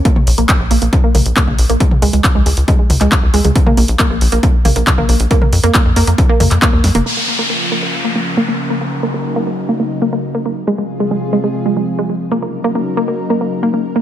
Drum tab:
HH |x-oxx-oxx-oxx-ox|x-oxx-oxx-oxx-ox|x-oxx-oxx-oxx-ox|x-oxx-oxx-oxx-ox|
CP |----x-------x---|----x------xx---|----x-------x---|----x------xx---|
SD |----------------|----------------|----------------|--------------o-|
T2 |-o--------o-oo--|-o--------o----o|-o--------o-oo--|-o--------o----o|
BD |o---o---o---o---|o---o---o---o---|o---o---o---o---|o---o---o---o---|

HH |----------------|----------------|----------------|----------------|
CP |----------------|----------------|----------------|----------------|
SD |----------------|----------------|----------------|----------------|
T2 |----------------|----------------|----------------|----------------|
BD |----------------|----------------|----------------|----------------|